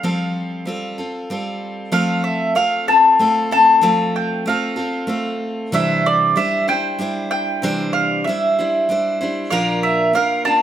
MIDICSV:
0, 0, Header, 1, 3, 480
1, 0, Start_track
1, 0, Key_signature, -1, "major"
1, 0, Tempo, 632911
1, 21, Time_signature, 3, 2, 24, 8
1, 8055, End_track
2, 0, Start_track
2, 0, Title_t, "Mandolin"
2, 0, Program_c, 0, 25
2, 0, Note_on_c, 0, 77, 66
2, 1204, Note_off_c, 0, 77, 0
2, 1460, Note_on_c, 0, 77, 79
2, 1694, Note_off_c, 0, 77, 0
2, 1698, Note_on_c, 0, 76, 72
2, 1938, Note_off_c, 0, 76, 0
2, 1941, Note_on_c, 0, 77, 83
2, 2182, Note_off_c, 0, 77, 0
2, 2185, Note_on_c, 0, 81, 89
2, 2663, Note_off_c, 0, 81, 0
2, 2672, Note_on_c, 0, 81, 98
2, 3150, Note_off_c, 0, 81, 0
2, 3153, Note_on_c, 0, 79, 74
2, 3372, Note_off_c, 0, 79, 0
2, 3395, Note_on_c, 0, 77, 65
2, 4079, Note_off_c, 0, 77, 0
2, 4358, Note_on_c, 0, 76, 83
2, 4598, Note_off_c, 0, 76, 0
2, 4598, Note_on_c, 0, 74, 83
2, 4830, Note_on_c, 0, 76, 81
2, 4838, Note_off_c, 0, 74, 0
2, 5068, Note_off_c, 0, 76, 0
2, 5071, Note_on_c, 0, 79, 89
2, 5517, Note_off_c, 0, 79, 0
2, 5542, Note_on_c, 0, 79, 96
2, 6011, Note_off_c, 0, 79, 0
2, 6014, Note_on_c, 0, 77, 79
2, 6252, Note_on_c, 0, 76, 73
2, 6266, Note_off_c, 0, 77, 0
2, 6947, Note_off_c, 0, 76, 0
2, 7209, Note_on_c, 0, 77, 81
2, 7439, Note_off_c, 0, 77, 0
2, 7457, Note_on_c, 0, 76, 77
2, 7695, Note_off_c, 0, 76, 0
2, 7698, Note_on_c, 0, 77, 81
2, 7922, Note_off_c, 0, 77, 0
2, 7925, Note_on_c, 0, 81, 92
2, 8055, Note_off_c, 0, 81, 0
2, 8055, End_track
3, 0, Start_track
3, 0, Title_t, "Steel-string acoustic guitar"
3, 0, Program_c, 1, 25
3, 25, Note_on_c, 1, 53, 60
3, 29, Note_on_c, 1, 55, 51
3, 31, Note_on_c, 1, 60, 56
3, 31, Note_on_c, 1, 65, 55
3, 35, Note_on_c, 1, 69, 65
3, 488, Note_off_c, 1, 55, 0
3, 497, Note_off_c, 1, 60, 0
3, 497, Note_on_c, 1, 55, 47
3, 500, Note_off_c, 1, 65, 0
3, 504, Note_off_c, 1, 53, 0
3, 506, Note_on_c, 1, 60, 47
3, 509, Note_off_c, 1, 69, 0
3, 509, Note_on_c, 1, 65, 54
3, 519, Note_on_c, 1, 69, 54
3, 735, Note_off_c, 1, 69, 0
3, 740, Note_off_c, 1, 55, 0
3, 743, Note_off_c, 1, 65, 0
3, 744, Note_off_c, 1, 60, 0
3, 744, Note_on_c, 1, 69, 42
3, 752, Note_on_c, 1, 65, 36
3, 760, Note_on_c, 1, 60, 31
3, 982, Note_off_c, 1, 60, 0
3, 983, Note_off_c, 1, 65, 0
3, 983, Note_off_c, 1, 69, 0
3, 986, Note_on_c, 1, 55, 50
3, 991, Note_on_c, 1, 60, 47
3, 992, Note_on_c, 1, 65, 56
3, 1001, Note_on_c, 1, 69, 55
3, 1449, Note_off_c, 1, 60, 0
3, 1449, Note_off_c, 1, 65, 0
3, 1453, Note_off_c, 1, 55, 0
3, 1453, Note_off_c, 1, 69, 0
3, 1453, Note_on_c, 1, 53, 66
3, 1456, Note_on_c, 1, 57, 61
3, 1458, Note_on_c, 1, 60, 70
3, 1458, Note_on_c, 1, 65, 71
3, 1462, Note_on_c, 1, 69, 81
3, 1926, Note_off_c, 1, 57, 0
3, 1935, Note_on_c, 1, 57, 54
3, 1938, Note_off_c, 1, 53, 0
3, 1938, Note_off_c, 1, 65, 0
3, 1941, Note_off_c, 1, 60, 0
3, 1943, Note_off_c, 1, 69, 0
3, 1944, Note_on_c, 1, 60, 56
3, 1948, Note_on_c, 1, 65, 59
3, 1955, Note_on_c, 1, 69, 55
3, 2173, Note_off_c, 1, 69, 0
3, 2179, Note_off_c, 1, 57, 0
3, 2182, Note_off_c, 1, 65, 0
3, 2182, Note_on_c, 1, 69, 42
3, 2184, Note_off_c, 1, 60, 0
3, 2191, Note_on_c, 1, 65, 40
3, 2199, Note_on_c, 1, 60, 36
3, 2420, Note_off_c, 1, 65, 0
3, 2421, Note_off_c, 1, 60, 0
3, 2422, Note_on_c, 1, 57, 51
3, 2423, Note_off_c, 1, 69, 0
3, 2429, Note_on_c, 1, 65, 60
3, 2430, Note_on_c, 1, 60, 58
3, 2437, Note_on_c, 1, 69, 60
3, 2655, Note_off_c, 1, 69, 0
3, 2663, Note_off_c, 1, 57, 0
3, 2664, Note_off_c, 1, 65, 0
3, 2664, Note_on_c, 1, 69, 48
3, 2667, Note_off_c, 1, 60, 0
3, 2673, Note_on_c, 1, 65, 37
3, 2681, Note_on_c, 1, 60, 38
3, 2893, Note_on_c, 1, 53, 65
3, 2894, Note_off_c, 1, 60, 0
3, 2895, Note_off_c, 1, 65, 0
3, 2898, Note_off_c, 1, 69, 0
3, 2901, Note_on_c, 1, 57, 73
3, 2903, Note_on_c, 1, 60, 67
3, 2904, Note_on_c, 1, 65, 74
3, 2907, Note_on_c, 1, 69, 76
3, 3371, Note_off_c, 1, 57, 0
3, 3378, Note_off_c, 1, 53, 0
3, 3380, Note_on_c, 1, 57, 55
3, 3384, Note_off_c, 1, 65, 0
3, 3385, Note_off_c, 1, 69, 0
3, 3388, Note_off_c, 1, 60, 0
3, 3391, Note_on_c, 1, 60, 55
3, 3394, Note_on_c, 1, 65, 63
3, 3407, Note_on_c, 1, 69, 59
3, 3601, Note_off_c, 1, 69, 0
3, 3610, Note_off_c, 1, 65, 0
3, 3610, Note_on_c, 1, 69, 43
3, 3619, Note_on_c, 1, 65, 40
3, 3622, Note_off_c, 1, 57, 0
3, 3623, Note_off_c, 1, 60, 0
3, 3632, Note_on_c, 1, 60, 32
3, 3843, Note_off_c, 1, 60, 0
3, 3844, Note_on_c, 1, 57, 53
3, 3852, Note_on_c, 1, 60, 56
3, 3853, Note_off_c, 1, 69, 0
3, 3855, Note_off_c, 1, 65, 0
3, 3862, Note_on_c, 1, 69, 59
3, 3864, Note_on_c, 1, 65, 61
3, 4334, Note_off_c, 1, 57, 0
3, 4339, Note_on_c, 1, 48, 68
3, 4340, Note_on_c, 1, 52, 66
3, 4343, Note_off_c, 1, 60, 0
3, 4343, Note_off_c, 1, 69, 0
3, 4344, Note_off_c, 1, 65, 0
3, 4346, Note_on_c, 1, 62, 70
3, 4348, Note_on_c, 1, 64, 79
3, 4349, Note_on_c, 1, 55, 71
3, 4351, Note_on_c, 1, 72, 74
3, 4812, Note_off_c, 1, 55, 0
3, 4821, Note_off_c, 1, 48, 0
3, 4821, Note_on_c, 1, 55, 48
3, 4822, Note_off_c, 1, 52, 0
3, 4826, Note_off_c, 1, 64, 0
3, 4827, Note_off_c, 1, 72, 0
3, 4830, Note_off_c, 1, 62, 0
3, 4833, Note_on_c, 1, 62, 63
3, 4835, Note_on_c, 1, 64, 54
3, 4841, Note_on_c, 1, 72, 61
3, 5054, Note_off_c, 1, 72, 0
3, 5056, Note_off_c, 1, 64, 0
3, 5062, Note_off_c, 1, 55, 0
3, 5063, Note_on_c, 1, 72, 39
3, 5064, Note_off_c, 1, 62, 0
3, 5065, Note_on_c, 1, 64, 44
3, 5073, Note_on_c, 1, 62, 36
3, 5078, Note_on_c, 1, 55, 32
3, 5289, Note_off_c, 1, 55, 0
3, 5296, Note_off_c, 1, 62, 0
3, 5298, Note_on_c, 1, 55, 55
3, 5303, Note_off_c, 1, 72, 0
3, 5304, Note_off_c, 1, 64, 0
3, 5305, Note_on_c, 1, 62, 58
3, 5313, Note_on_c, 1, 64, 59
3, 5320, Note_on_c, 1, 72, 63
3, 5779, Note_on_c, 1, 48, 63
3, 5781, Note_off_c, 1, 55, 0
3, 5785, Note_off_c, 1, 72, 0
3, 5787, Note_on_c, 1, 52, 74
3, 5788, Note_off_c, 1, 64, 0
3, 5789, Note_on_c, 1, 55, 76
3, 5790, Note_off_c, 1, 62, 0
3, 5793, Note_on_c, 1, 62, 80
3, 5794, Note_on_c, 1, 72, 78
3, 6261, Note_off_c, 1, 48, 0
3, 6265, Note_off_c, 1, 52, 0
3, 6266, Note_off_c, 1, 55, 0
3, 6269, Note_off_c, 1, 72, 0
3, 6272, Note_off_c, 1, 62, 0
3, 6275, Note_on_c, 1, 55, 49
3, 6275, Note_on_c, 1, 62, 51
3, 6284, Note_on_c, 1, 64, 55
3, 6288, Note_on_c, 1, 72, 63
3, 6502, Note_off_c, 1, 72, 0
3, 6508, Note_off_c, 1, 64, 0
3, 6509, Note_off_c, 1, 55, 0
3, 6509, Note_off_c, 1, 62, 0
3, 6511, Note_on_c, 1, 72, 41
3, 6517, Note_on_c, 1, 64, 40
3, 6524, Note_on_c, 1, 62, 38
3, 6528, Note_on_c, 1, 55, 36
3, 6732, Note_off_c, 1, 55, 0
3, 6738, Note_off_c, 1, 62, 0
3, 6741, Note_on_c, 1, 55, 52
3, 6747, Note_off_c, 1, 64, 0
3, 6747, Note_off_c, 1, 72, 0
3, 6747, Note_on_c, 1, 62, 49
3, 6756, Note_on_c, 1, 64, 56
3, 6760, Note_on_c, 1, 72, 63
3, 6973, Note_off_c, 1, 72, 0
3, 6979, Note_off_c, 1, 64, 0
3, 6982, Note_off_c, 1, 55, 0
3, 6982, Note_on_c, 1, 72, 49
3, 6985, Note_off_c, 1, 62, 0
3, 6989, Note_on_c, 1, 64, 44
3, 6997, Note_on_c, 1, 62, 45
3, 7001, Note_on_c, 1, 55, 41
3, 7212, Note_on_c, 1, 46, 65
3, 7213, Note_off_c, 1, 62, 0
3, 7218, Note_on_c, 1, 53, 73
3, 7220, Note_off_c, 1, 55, 0
3, 7221, Note_off_c, 1, 64, 0
3, 7222, Note_on_c, 1, 62, 74
3, 7223, Note_off_c, 1, 72, 0
3, 7223, Note_on_c, 1, 58, 73
3, 7224, Note_on_c, 1, 65, 67
3, 7228, Note_on_c, 1, 70, 76
3, 7676, Note_off_c, 1, 58, 0
3, 7685, Note_on_c, 1, 58, 47
3, 7686, Note_off_c, 1, 62, 0
3, 7691, Note_off_c, 1, 65, 0
3, 7695, Note_on_c, 1, 62, 53
3, 7697, Note_off_c, 1, 46, 0
3, 7700, Note_off_c, 1, 70, 0
3, 7700, Note_on_c, 1, 65, 62
3, 7701, Note_off_c, 1, 53, 0
3, 7709, Note_on_c, 1, 70, 61
3, 7915, Note_off_c, 1, 70, 0
3, 7924, Note_off_c, 1, 65, 0
3, 7924, Note_on_c, 1, 70, 45
3, 7933, Note_on_c, 1, 65, 41
3, 7934, Note_off_c, 1, 58, 0
3, 7934, Note_off_c, 1, 62, 0
3, 7943, Note_on_c, 1, 62, 40
3, 7948, Note_on_c, 1, 58, 34
3, 8055, Note_off_c, 1, 58, 0
3, 8055, Note_off_c, 1, 62, 0
3, 8055, Note_off_c, 1, 65, 0
3, 8055, Note_off_c, 1, 70, 0
3, 8055, End_track
0, 0, End_of_file